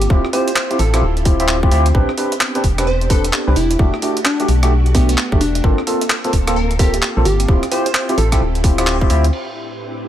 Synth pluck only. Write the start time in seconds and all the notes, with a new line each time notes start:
0.33 C5
0.48 C5
0.79 A4
0.94 A4
2.87 C5
3.10 A4
3.56 E4
4.26 D4
4.95 B3
5.09 B3
5.18 B3
5.41 D4
5.55 D4
6.56 A#4
6.79 G4
7.25 G4
7.72 C5
7.86 C5
8.18 A4
8.32 A4